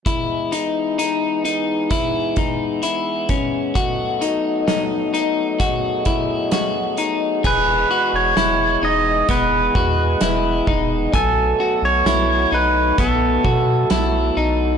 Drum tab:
CC |--------|--------|x-------|--------|
HH |xxxxxxxx|xxxxxxxx|--x-x-x-|x-x-x-x-|
SD |--------|--o---o-|--o---o-|--o---o-|
BD |o---oo-o|o---oo--|o---oo-o|o---oo--|